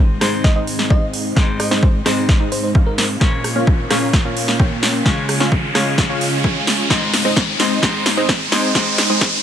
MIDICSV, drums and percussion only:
0, 0, Header, 1, 2, 480
1, 0, Start_track
1, 0, Key_signature, -4, "major"
1, 0, Tempo, 461538
1, 1421, Time_signature, 4, 2, 24, 8
1, 9804, End_track
2, 0, Start_track
2, 0, Title_t, "Drums"
2, 221, Note_on_c, 9, 37, 72
2, 221, Note_on_c, 9, 38, 48
2, 221, Note_on_c, 9, 46, 88
2, 325, Note_off_c, 9, 37, 0
2, 325, Note_off_c, 9, 38, 0
2, 325, Note_off_c, 9, 46, 0
2, 461, Note_on_c, 9, 36, 116
2, 462, Note_on_c, 9, 38, 49
2, 565, Note_off_c, 9, 36, 0
2, 566, Note_off_c, 9, 38, 0
2, 701, Note_on_c, 9, 46, 99
2, 805, Note_off_c, 9, 46, 0
2, 821, Note_on_c, 9, 38, 42
2, 925, Note_off_c, 9, 38, 0
2, 940, Note_on_c, 9, 36, 113
2, 1044, Note_off_c, 9, 36, 0
2, 1181, Note_on_c, 9, 46, 89
2, 1285, Note_off_c, 9, 46, 0
2, 1420, Note_on_c, 9, 36, 120
2, 1421, Note_on_c, 9, 38, 51
2, 1524, Note_off_c, 9, 36, 0
2, 1525, Note_off_c, 9, 38, 0
2, 1661, Note_on_c, 9, 37, 58
2, 1661, Note_on_c, 9, 46, 107
2, 1765, Note_off_c, 9, 37, 0
2, 1765, Note_off_c, 9, 46, 0
2, 1781, Note_on_c, 9, 38, 46
2, 1885, Note_off_c, 9, 38, 0
2, 1900, Note_on_c, 9, 36, 116
2, 2004, Note_off_c, 9, 36, 0
2, 2141, Note_on_c, 9, 37, 72
2, 2141, Note_on_c, 9, 38, 52
2, 2141, Note_on_c, 9, 46, 88
2, 2245, Note_off_c, 9, 37, 0
2, 2245, Note_off_c, 9, 38, 0
2, 2245, Note_off_c, 9, 46, 0
2, 2380, Note_on_c, 9, 36, 121
2, 2380, Note_on_c, 9, 38, 55
2, 2484, Note_off_c, 9, 36, 0
2, 2484, Note_off_c, 9, 38, 0
2, 2620, Note_on_c, 9, 46, 108
2, 2724, Note_off_c, 9, 46, 0
2, 2860, Note_on_c, 9, 36, 119
2, 2964, Note_off_c, 9, 36, 0
2, 3100, Note_on_c, 9, 38, 57
2, 3100, Note_on_c, 9, 46, 96
2, 3204, Note_off_c, 9, 38, 0
2, 3204, Note_off_c, 9, 46, 0
2, 3340, Note_on_c, 9, 36, 124
2, 3340, Note_on_c, 9, 38, 58
2, 3444, Note_off_c, 9, 36, 0
2, 3444, Note_off_c, 9, 38, 0
2, 3581, Note_on_c, 9, 37, 58
2, 3581, Note_on_c, 9, 46, 110
2, 3685, Note_off_c, 9, 37, 0
2, 3685, Note_off_c, 9, 46, 0
2, 3820, Note_on_c, 9, 36, 122
2, 3924, Note_off_c, 9, 36, 0
2, 4061, Note_on_c, 9, 37, 72
2, 4061, Note_on_c, 9, 38, 57
2, 4061, Note_on_c, 9, 46, 95
2, 4165, Note_off_c, 9, 37, 0
2, 4165, Note_off_c, 9, 38, 0
2, 4165, Note_off_c, 9, 46, 0
2, 4300, Note_on_c, 9, 36, 123
2, 4301, Note_on_c, 9, 38, 63
2, 4404, Note_off_c, 9, 36, 0
2, 4405, Note_off_c, 9, 38, 0
2, 4541, Note_on_c, 9, 46, 104
2, 4645, Note_off_c, 9, 46, 0
2, 4660, Note_on_c, 9, 38, 55
2, 4764, Note_off_c, 9, 38, 0
2, 4779, Note_on_c, 9, 36, 121
2, 4883, Note_off_c, 9, 36, 0
2, 5021, Note_on_c, 9, 38, 64
2, 5021, Note_on_c, 9, 46, 96
2, 5125, Note_off_c, 9, 38, 0
2, 5125, Note_off_c, 9, 46, 0
2, 5259, Note_on_c, 9, 36, 120
2, 5261, Note_on_c, 9, 38, 65
2, 5363, Note_off_c, 9, 36, 0
2, 5365, Note_off_c, 9, 38, 0
2, 5500, Note_on_c, 9, 37, 59
2, 5500, Note_on_c, 9, 46, 107
2, 5604, Note_off_c, 9, 37, 0
2, 5604, Note_off_c, 9, 46, 0
2, 5620, Note_on_c, 9, 38, 59
2, 5724, Note_off_c, 9, 38, 0
2, 5739, Note_on_c, 9, 36, 122
2, 5843, Note_off_c, 9, 36, 0
2, 5981, Note_on_c, 9, 37, 73
2, 5981, Note_on_c, 9, 38, 67
2, 5981, Note_on_c, 9, 46, 91
2, 6085, Note_off_c, 9, 37, 0
2, 6085, Note_off_c, 9, 38, 0
2, 6085, Note_off_c, 9, 46, 0
2, 6219, Note_on_c, 9, 36, 118
2, 6220, Note_on_c, 9, 38, 68
2, 6323, Note_off_c, 9, 36, 0
2, 6324, Note_off_c, 9, 38, 0
2, 6460, Note_on_c, 9, 46, 108
2, 6564, Note_off_c, 9, 46, 0
2, 6699, Note_on_c, 9, 36, 117
2, 6803, Note_off_c, 9, 36, 0
2, 6941, Note_on_c, 9, 38, 73
2, 6941, Note_on_c, 9, 46, 95
2, 7045, Note_off_c, 9, 38, 0
2, 7045, Note_off_c, 9, 46, 0
2, 7179, Note_on_c, 9, 36, 117
2, 7181, Note_on_c, 9, 38, 75
2, 7283, Note_off_c, 9, 36, 0
2, 7285, Note_off_c, 9, 38, 0
2, 7421, Note_on_c, 9, 38, 74
2, 7421, Note_on_c, 9, 46, 107
2, 7525, Note_off_c, 9, 38, 0
2, 7525, Note_off_c, 9, 46, 0
2, 7659, Note_on_c, 9, 36, 117
2, 7661, Note_on_c, 9, 38, 73
2, 7763, Note_off_c, 9, 36, 0
2, 7765, Note_off_c, 9, 38, 0
2, 7901, Note_on_c, 9, 38, 74
2, 7901, Note_on_c, 9, 46, 92
2, 8005, Note_off_c, 9, 38, 0
2, 8005, Note_off_c, 9, 46, 0
2, 8140, Note_on_c, 9, 36, 120
2, 8142, Note_on_c, 9, 38, 77
2, 8244, Note_off_c, 9, 36, 0
2, 8246, Note_off_c, 9, 38, 0
2, 8382, Note_on_c, 9, 38, 79
2, 8382, Note_on_c, 9, 46, 104
2, 8486, Note_off_c, 9, 38, 0
2, 8486, Note_off_c, 9, 46, 0
2, 8620, Note_on_c, 9, 36, 117
2, 8621, Note_on_c, 9, 38, 80
2, 8724, Note_off_c, 9, 36, 0
2, 8725, Note_off_c, 9, 38, 0
2, 8862, Note_on_c, 9, 38, 82
2, 8862, Note_on_c, 9, 46, 95
2, 8966, Note_off_c, 9, 38, 0
2, 8966, Note_off_c, 9, 46, 0
2, 9100, Note_on_c, 9, 36, 114
2, 9102, Note_on_c, 9, 38, 83
2, 9204, Note_off_c, 9, 36, 0
2, 9206, Note_off_c, 9, 38, 0
2, 9342, Note_on_c, 9, 38, 84
2, 9342, Note_on_c, 9, 46, 105
2, 9446, Note_off_c, 9, 38, 0
2, 9446, Note_off_c, 9, 46, 0
2, 9580, Note_on_c, 9, 36, 115
2, 9581, Note_on_c, 9, 38, 84
2, 9684, Note_off_c, 9, 36, 0
2, 9685, Note_off_c, 9, 38, 0
2, 9804, End_track
0, 0, End_of_file